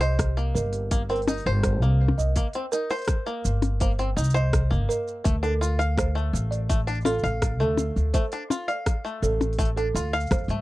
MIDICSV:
0, 0, Header, 1, 6, 480
1, 0, Start_track
1, 0, Tempo, 722892
1, 1567, Time_signature, 4, 2, 24, 8
1, 7046, End_track
2, 0, Start_track
2, 0, Title_t, "Marimba"
2, 0, Program_c, 0, 12
2, 12, Note_on_c, 0, 75, 78
2, 124, Note_off_c, 0, 75, 0
2, 363, Note_on_c, 0, 70, 97
2, 479, Note_off_c, 0, 70, 0
2, 734, Note_on_c, 0, 70, 80
2, 844, Note_off_c, 0, 70, 0
2, 1090, Note_on_c, 0, 72, 85
2, 1157, Note_off_c, 0, 72, 0
2, 1446, Note_on_c, 0, 75, 79
2, 1561, Note_off_c, 0, 75, 0
2, 1806, Note_on_c, 0, 70, 110
2, 1920, Note_off_c, 0, 70, 0
2, 2165, Note_on_c, 0, 70, 72
2, 2280, Note_off_c, 0, 70, 0
2, 2526, Note_on_c, 0, 72, 75
2, 2595, Note_off_c, 0, 72, 0
2, 2887, Note_on_c, 0, 75, 76
2, 3001, Note_off_c, 0, 75, 0
2, 3246, Note_on_c, 0, 70, 109
2, 3361, Note_off_c, 0, 70, 0
2, 3606, Note_on_c, 0, 69, 77
2, 3720, Note_off_c, 0, 69, 0
2, 3969, Note_on_c, 0, 72, 84
2, 4036, Note_off_c, 0, 72, 0
2, 4321, Note_on_c, 0, 74, 84
2, 4438, Note_off_c, 0, 74, 0
2, 4687, Note_on_c, 0, 69, 103
2, 4801, Note_off_c, 0, 69, 0
2, 5046, Note_on_c, 0, 69, 81
2, 5160, Note_off_c, 0, 69, 0
2, 5402, Note_on_c, 0, 72, 81
2, 5473, Note_off_c, 0, 72, 0
2, 5770, Note_on_c, 0, 74, 80
2, 5883, Note_off_c, 0, 74, 0
2, 6127, Note_on_c, 0, 69, 91
2, 6241, Note_off_c, 0, 69, 0
2, 6484, Note_on_c, 0, 69, 74
2, 6599, Note_off_c, 0, 69, 0
2, 6845, Note_on_c, 0, 72, 85
2, 6914, Note_off_c, 0, 72, 0
2, 7046, End_track
3, 0, Start_track
3, 0, Title_t, "Five-string banjo"
3, 0, Program_c, 1, 105
3, 4, Note_on_c, 1, 72, 101
3, 233, Note_off_c, 1, 72, 0
3, 246, Note_on_c, 1, 58, 70
3, 595, Note_off_c, 1, 58, 0
3, 606, Note_on_c, 1, 58, 80
3, 675, Note_off_c, 1, 58, 0
3, 728, Note_on_c, 1, 60, 72
3, 796, Note_off_c, 1, 60, 0
3, 850, Note_on_c, 1, 63, 73
3, 957, Note_off_c, 1, 63, 0
3, 973, Note_on_c, 1, 72, 106
3, 1198, Note_off_c, 1, 72, 0
3, 1210, Note_on_c, 1, 58, 73
3, 1556, Note_off_c, 1, 58, 0
3, 1571, Note_on_c, 1, 58, 76
3, 1637, Note_off_c, 1, 58, 0
3, 1694, Note_on_c, 1, 60, 77
3, 1759, Note_off_c, 1, 60, 0
3, 1813, Note_on_c, 1, 63, 67
3, 1918, Note_off_c, 1, 63, 0
3, 1929, Note_on_c, 1, 72, 102
3, 2156, Note_off_c, 1, 72, 0
3, 2168, Note_on_c, 1, 58, 76
3, 2515, Note_off_c, 1, 58, 0
3, 2531, Note_on_c, 1, 58, 87
3, 2597, Note_off_c, 1, 58, 0
3, 2650, Note_on_c, 1, 60, 74
3, 2717, Note_off_c, 1, 60, 0
3, 2766, Note_on_c, 1, 63, 68
3, 2874, Note_off_c, 1, 63, 0
3, 2884, Note_on_c, 1, 72, 109
3, 3113, Note_off_c, 1, 72, 0
3, 3125, Note_on_c, 1, 58, 73
3, 3474, Note_off_c, 1, 58, 0
3, 3482, Note_on_c, 1, 57, 83
3, 3553, Note_off_c, 1, 57, 0
3, 3604, Note_on_c, 1, 62, 84
3, 3674, Note_off_c, 1, 62, 0
3, 3726, Note_on_c, 1, 65, 76
3, 3835, Note_off_c, 1, 65, 0
3, 3844, Note_on_c, 1, 77, 96
3, 4074, Note_off_c, 1, 77, 0
3, 4085, Note_on_c, 1, 57, 78
3, 4434, Note_off_c, 1, 57, 0
3, 4445, Note_on_c, 1, 57, 80
3, 4514, Note_off_c, 1, 57, 0
3, 4563, Note_on_c, 1, 62, 75
3, 4634, Note_off_c, 1, 62, 0
3, 4681, Note_on_c, 1, 65, 69
3, 4792, Note_off_c, 1, 65, 0
3, 4804, Note_on_c, 1, 77, 104
3, 5034, Note_off_c, 1, 77, 0
3, 5047, Note_on_c, 1, 57, 73
3, 5395, Note_off_c, 1, 57, 0
3, 5408, Note_on_c, 1, 57, 82
3, 5476, Note_off_c, 1, 57, 0
3, 5529, Note_on_c, 1, 62, 75
3, 5596, Note_off_c, 1, 62, 0
3, 5648, Note_on_c, 1, 65, 71
3, 5755, Note_off_c, 1, 65, 0
3, 5764, Note_on_c, 1, 77, 90
3, 5993, Note_off_c, 1, 77, 0
3, 6007, Note_on_c, 1, 57, 80
3, 6355, Note_off_c, 1, 57, 0
3, 6365, Note_on_c, 1, 57, 85
3, 6434, Note_off_c, 1, 57, 0
3, 6489, Note_on_c, 1, 62, 73
3, 6556, Note_off_c, 1, 62, 0
3, 6610, Note_on_c, 1, 65, 69
3, 6716, Note_off_c, 1, 65, 0
3, 6728, Note_on_c, 1, 77, 110
3, 6956, Note_off_c, 1, 77, 0
3, 6973, Note_on_c, 1, 57, 72
3, 7046, Note_off_c, 1, 57, 0
3, 7046, End_track
4, 0, Start_track
4, 0, Title_t, "Upright bass"
4, 0, Program_c, 2, 32
4, 0, Note_on_c, 2, 36, 90
4, 336, Note_off_c, 2, 36, 0
4, 367, Note_on_c, 2, 31, 92
4, 936, Note_off_c, 2, 31, 0
4, 969, Note_on_c, 2, 31, 89
4, 1209, Note_off_c, 2, 31, 0
4, 1209, Note_on_c, 2, 36, 87
4, 1410, Note_off_c, 2, 36, 0
4, 1451, Note_on_c, 2, 36, 88
4, 1550, Note_off_c, 2, 36, 0
4, 2290, Note_on_c, 2, 31, 93
4, 2738, Note_off_c, 2, 31, 0
4, 2767, Note_on_c, 2, 36, 97
4, 3130, Note_on_c, 2, 31, 77
4, 3140, Note_off_c, 2, 36, 0
4, 3229, Note_off_c, 2, 31, 0
4, 3488, Note_on_c, 2, 38, 99
4, 4177, Note_off_c, 2, 38, 0
4, 4205, Note_on_c, 2, 33, 99
4, 4775, Note_off_c, 2, 33, 0
4, 4803, Note_on_c, 2, 33, 85
4, 5049, Note_off_c, 2, 33, 0
4, 5049, Note_on_c, 2, 38, 88
4, 5250, Note_off_c, 2, 38, 0
4, 5287, Note_on_c, 2, 38, 92
4, 5388, Note_off_c, 2, 38, 0
4, 6125, Note_on_c, 2, 33, 98
4, 6575, Note_off_c, 2, 33, 0
4, 6604, Note_on_c, 2, 38, 91
4, 6842, Note_off_c, 2, 38, 0
4, 6846, Note_on_c, 2, 41, 108
4, 6947, Note_off_c, 2, 41, 0
4, 6960, Note_on_c, 2, 43, 103
4, 7046, Note_off_c, 2, 43, 0
4, 7046, End_track
5, 0, Start_track
5, 0, Title_t, "Percussion blips"
5, 847, Note_on_c, 9, 64, 86
5, 913, Note_off_c, 9, 64, 0
5, 1384, Note_on_c, 9, 64, 65
5, 1450, Note_off_c, 9, 64, 0
5, 2405, Note_on_c, 9, 64, 71
5, 2472, Note_off_c, 9, 64, 0
5, 4682, Note_on_c, 9, 64, 82
5, 4749, Note_off_c, 9, 64, 0
5, 5162, Note_on_c, 9, 64, 69
5, 5229, Note_off_c, 9, 64, 0
5, 5646, Note_on_c, 9, 64, 63
5, 5712, Note_off_c, 9, 64, 0
5, 6247, Note_on_c, 9, 64, 73
5, 6314, Note_off_c, 9, 64, 0
5, 7046, End_track
6, 0, Start_track
6, 0, Title_t, "Drums"
6, 4, Note_on_c, 9, 46, 32
6, 10, Note_on_c, 9, 82, 34
6, 70, Note_off_c, 9, 46, 0
6, 76, Note_off_c, 9, 82, 0
6, 125, Note_on_c, 9, 36, 109
6, 128, Note_on_c, 9, 37, 100
6, 128, Note_on_c, 9, 46, 69
6, 135, Note_on_c, 9, 82, 40
6, 192, Note_off_c, 9, 36, 0
6, 195, Note_off_c, 9, 37, 0
6, 195, Note_off_c, 9, 46, 0
6, 201, Note_off_c, 9, 82, 0
6, 253, Note_on_c, 9, 82, 22
6, 319, Note_off_c, 9, 82, 0
6, 372, Note_on_c, 9, 82, 76
6, 438, Note_off_c, 9, 82, 0
6, 483, Note_on_c, 9, 46, 45
6, 489, Note_on_c, 9, 82, 34
6, 549, Note_off_c, 9, 46, 0
6, 556, Note_off_c, 9, 82, 0
6, 605, Note_on_c, 9, 46, 71
6, 606, Note_on_c, 9, 36, 102
6, 611, Note_on_c, 9, 82, 45
6, 671, Note_off_c, 9, 46, 0
6, 673, Note_off_c, 9, 36, 0
6, 678, Note_off_c, 9, 82, 0
6, 726, Note_on_c, 9, 46, 15
6, 733, Note_on_c, 9, 82, 24
6, 768, Note_off_c, 9, 46, 0
6, 768, Note_on_c, 9, 46, 17
6, 799, Note_off_c, 9, 82, 0
6, 810, Note_off_c, 9, 46, 0
6, 810, Note_on_c, 9, 46, 20
6, 847, Note_off_c, 9, 46, 0
6, 847, Note_on_c, 9, 46, 23
6, 853, Note_on_c, 9, 82, 77
6, 887, Note_off_c, 9, 46, 0
6, 887, Note_on_c, 9, 46, 24
6, 913, Note_off_c, 9, 82, 0
6, 913, Note_on_c, 9, 82, 36
6, 929, Note_off_c, 9, 46, 0
6, 929, Note_on_c, 9, 46, 29
6, 980, Note_off_c, 9, 82, 0
6, 995, Note_off_c, 9, 46, 0
6, 1085, Note_on_c, 9, 37, 98
6, 1085, Note_on_c, 9, 46, 64
6, 1087, Note_on_c, 9, 36, 105
6, 1091, Note_on_c, 9, 82, 41
6, 1152, Note_off_c, 9, 37, 0
6, 1152, Note_off_c, 9, 46, 0
6, 1153, Note_off_c, 9, 36, 0
6, 1158, Note_off_c, 9, 82, 0
6, 1214, Note_on_c, 9, 82, 22
6, 1280, Note_off_c, 9, 82, 0
6, 1454, Note_on_c, 9, 82, 76
6, 1520, Note_off_c, 9, 82, 0
6, 1565, Note_on_c, 9, 46, 66
6, 1567, Note_on_c, 9, 36, 106
6, 1571, Note_on_c, 9, 82, 47
6, 1631, Note_off_c, 9, 46, 0
6, 1634, Note_off_c, 9, 36, 0
6, 1637, Note_off_c, 9, 82, 0
6, 1683, Note_on_c, 9, 46, 39
6, 1689, Note_on_c, 9, 82, 20
6, 1749, Note_off_c, 9, 46, 0
6, 1755, Note_off_c, 9, 82, 0
6, 1808, Note_on_c, 9, 82, 76
6, 1875, Note_off_c, 9, 82, 0
6, 1924, Note_on_c, 9, 46, 13
6, 1930, Note_on_c, 9, 82, 35
6, 1946, Note_off_c, 9, 46, 0
6, 1946, Note_on_c, 9, 46, 17
6, 1966, Note_off_c, 9, 46, 0
6, 1966, Note_on_c, 9, 46, 18
6, 1982, Note_off_c, 9, 46, 0
6, 1982, Note_on_c, 9, 46, 20
6, 1996, Note_off_c, 9, 82, 0
6, 2003, Note_off_c, 9, 46, 0
6, 2003, Note_on_c, 9, 46, 24
6, 2023, Note_off_c, 9, 46, 0
6, 2023, Note_on_c, 9, 46, 29
6, 2042, Note_off_c, 9, 46, 0
6, 2042, Note_on_c, 9, 37, 104
6, 2042, Note_on_c, 9, 46, 63
6, 2048, Note_on_c, 9, 36, 118
6, 2049, Note_on_c, 9, 82, 43
6, 2109, Note_off_c, 9, 37, 0
6, 2109, Note_off_c, 9, 46, 0
6, 2114, Note_off_c, 9, 36, 0
6, 2115, Note_off_c, 9, 82, 0
6, 2170, Note_on_c, 9, 82, 23
6, 2236, Note_off_c, 9, 82, 0
6, 2290, Note_on_c, 9, 82, 83
6, 2357, Note_off_c, 9, 82, 0
6, 2405, Note_on_c, 9, 46, 43
6, 2412, Note_on_c, 9, 82, 34
6, 2472, Note_off_c, 9, 46, 0
6, 2478, Note_off_c, 9, 82, 0
6, 2525, Note_on_c, 9, 46, 64
6, 2529, Note_on_c, 9, 36, 115
6, 2532, Note_on_c, 9, 82, 47
6, 2592, Note_off_c, 9, 46, 0
6, 2596, Note_off_c, 9, 36, 0
6, 2598, Note_off_c, 9, 82, 0
6, 2648, Note_on_c, 9, 46, 33
6, 2654, Note_on_c, 9, 82, 24
6, 2715, Note_off_c, 9, 46, 0
6, 2721, Note_off_c, 9, 82, 0
6, 2773, Note_on_c, 9, 82, 83
6, 2813, Note_off_c, 9, 82, 0
6, 2813, Note_on_c, 9, 82, 63
6, 2855, Note_off_c, 9, 82, 0
6, 2855, Note_on_c, 9, 82, 53
6, 2895, Note_off_c, 9, 82, 0
6, 2895, Note_on_c, 9, 82, 36
6, 2961, Note_off_c, 9, 82, 0
6, 3009, Note_on_c, 9, 36, 116
6, 3010, Note_on_c, 9, 37, 111
6, 3010, Note_on_c, 9, 46, 70
6, 3017, Note_on_c, 9, 82, 43
6, 3075, Note_off_c, 9, 36, 0
6, 3077, Note_off_c, 9, 37, 0
6, 3077, Note_off_c, 9, 46, 0
6, 3083, Note_off_c, 9, 82, 0
6, 3137, Note_on_c, 9, 82, 25
6, 3204, Note_off_c, 9, 82, 0
6, 3257, Note_on_c, 9, 82, 74
6, 3323, Note_off_c, 9, 82, 0
6, 3372, Note_on_c, 9, 82, 34
6, 3439, Note_off_c, 9, 82, 0
6, 3487, Note_on_c, 9, 46, 70
6, 3488, Note_on_c, 9, 36, 114
6, 3494, Note_on_c, 9, 82, 51
6, 3554, Note_off_c, 9, 36, 0
6, 3554, Note_off_c, 9, 46, 0
6, 3560, Note_off_c, 9, 82, 0
6, 3608, Note_on_c, 9, 46, 42
6, 3615, Note_on_c, 9, 82, 21
6, 3675, Note_off_c, 9, 46, 0
6, 3681, Note_off_c, 9, 82, 0
6, 3735, Note_on_c, 9, 82, 85
6, 3801, Note_off_c, 9, 82, 0
6, 3849, Note_on_c, 9, 46, 29
6, 3856, Note_on_c, 9, 82, 36
6, 3916, Note_off_c, 9, 46, 0
6, 3922, Note_off_c, 9, 82, 0
6, 3968, Note_on_c, 9, 36, 115
6, 3974, Note_on_c, 9, 37, 103
6, 3974, Note_on_c, 9, 46, 63
6, 3980, Note_on_c, 9, 82, 47
6, 4034, Note_off_c, 9, 36, 0
6, 4040, Note_off_c, 9, 37, 0
6, 4040, Note_off_c, 9, 46, 0
6, 4046, Note_off_c, 9, 82, 0
6, 4099, Note_on_c, 9, 82, 25
6, 4165, Note_off_c, 9, 82, 0
6, 4218, Note_on_c, 9, 82, 83
6, 4285, Note_off_c, 9, 82, 0
6, 4330, Note_on_c, 9, 46, 41
6, 4337, Note_on_c, 9, 82, 35
6, 4397, Note_off_c, 9, 46, 0
6, 4403, Note_off_c, 9, 82, 0
6, 4446, Note_on_c, 9, 36, 110
6, 4449, Note_on_c, 9, 46, 62
6, 4455, Note_on_c, 9, 82, 48
6, 4513, Note_off_c, 9, 36, 0
6, 4515, Note_off_c, 9, 46, 0
6, 4521, Note_off_c, 9, 82, 0
6, 4568, Note_on_c, 9, 46, 34
6, 4574, Note_on_c, 9, 82, 11
6, 4611, Note_off_c, 9, 82, 0
6, 4611, Note_on_c, 9, 82, 13
6, 4634, Note_off_c, 9, 46, 0
6, 4653, Note_off_c, 9, 82, 0
6, 4653, Note_on_c, 9, 82, 15
6, 4689, Note_off_c, 9, 82, 0
6, 4689, Note_on_c, 9, 82, 83
6, 4755, Note_off_c, 9, 82, 0
6, 4772, Note_on_c, 9, 82, 21
6, 4813, Note_off_c, 9, 82, 0
6, 4813, Note_on_c, 9, 82, 36
6, 4879, Note_off_c, 9, 82, 0
6, 4926, Note_on_c, 9, 36, 109
6, 4927, Note_on_c, 9, 37, 104
6, 4927, Note_on_c, 9, 46, 60
6, 4934, Note_on_c, 9, 82, 48
6, 4992, Note_off_c, 9, 36, 0
6, 4994, Note_off_c, 9, 37, 0
6, 4994, Note_off_c, 9, 46, 0
6, 5000, Note_off_c, 9, 82, 0
6, 5051, Note_on_c, 9, 82, 25
6, 5118, Note_off_c, 9, 82, 0
6, 5168, Note_on_c, 9, 82, 72
6, 5235, Note_off_c, 9, 82, 0
6, 5291, Note_on_c, 9, 82, 39
6, 5358, Note_off_c, 9, 82, 0
6, 5404, Note_on_c, 9, 46, 65
6, 5405, Note_on_c, 9, 36, 110
6, 5410, Note_on_c, 9, 82, 47
6, 5470, Note_off_c, 9, 46, 0
6, 5472, Note_off_c, 9, 36, 0
6, 5477, Note_off_c, 9, 82, 0
6, 5523, Note_on_c, 9, 46, 41
6, 5529, Note_on_c, 9, 82, 21
6, 5589, Note_off_c, 9, 46, 0
6, 5596, Note_off_c, 9, 82, 0
6, 5652, Note_on_c, 9, 82, 84
6, 5719, Note_off_c, 9, 82, 0
6, 5766, Note_on_c, 9, 46, 28
6, 5772, Note_on_c, 9, 82, 34
6, 5832, Note_off_c, 9, 46, 0
6, 5838, Note_off_c, 9, 82, 0
6, 5885, Note_on_c, 9, 36, 115
6, 5886, Note_on_c, 9, 37, 101
6, 5886, Note_on_c, 9, 46, 58
6, 5892, Note_on_c, 9, 82, 45
6, 5951, Note_off_c, 9, 36, 0
6, 5952, Note_off_c, 9, 37, 0
6, 5952, Note_off_c, 9, 46, 0
6, 5959, Note_off_c, 9, 82, 0
6, 6014, Note_on_c, 9, 82, 26
6, 6081, Note_off_c, 9, 82, 0
6, 6131, Note_on_c, 9, 82, 89
6, 6197, Note_off_c, 9, 82, 0
6, 6247, Note_on_c, 9, 46, 18
6, 6253, Note_on_c, 9, 82, 34
6, 6314, Note_off_c, 9, 46, 0
6, 6320, Note_off_c, 9, 82, 0
6, 6327, Note_on_c, 9, 46, 26
6, 6365, Note_on_c, 9, 36, 102
6, 6368, Note_off_c, 9, 46, 0
6, 6368, Note_on_c, 9, 46, 61
6, 6374, Note_on_c, 9, 82, 48
6, 6409, Note_off_c, 9, 46, 0
6, 6409, Note_on_c, 9, 46, 32
6, 6431, Note_off_c, 9, 36, 0
6, 6441, Note_off_c, 9, 82, 0
6, 6475, Note_off_c, 9, 46, 0
6, 6490, Note_on_c, 9, 46, 33
6, 6496, Note_on_c, 9, 82, 24
6, 6556, Note_off_c, 9, 46, 0
6, 6563, Note_off_c, 9, 82, 0
6, 6614, Note_on_c, 9, 82, 80
6, 6680, Note_off_c, 9, 82, 0
6, 6733, Note_on_c, 9, 82, 34
6, 6774, Note_off_c, 9, 82, 0
6, 6774, Note_on_c, 9, 82, 29
6, 6816, Note_off_c, 9, 82, 0
6, 6816, Note_on_c, 9, 82, 23
6, 6845, Note_on_c, 9, 36, 114
6, 6849, Note_on_c, 9, 37, 105
6, 6849, Note_on_c, 9, 46, 65
6, 6855, Note_off_c, 9, 82, 0
6, 6855, Note_on_c, 9, 82, 44
6, 6911, Note_off_c, 9, 36, 0
6, 6915, Note_off_c, 9, 37, 0
6, 6915, Note_off_c, 9, 46, 0
6, 6922, Note_off_c, 9, 82, 0
6, 6933, Note_on_c, 9, 82, 11
6, 6967, Note_on_c, 9, 46, 29
6, 6973, Note_off_c, 9, 82, 0
6, 6973, Note_on_c, 9, 82, 25
6, 7033, Note_off_c, 9, 46, 0
6, 7039, Note_off_c, 9, 82, 0
6, 7046, End_track
0, 0, End_of_file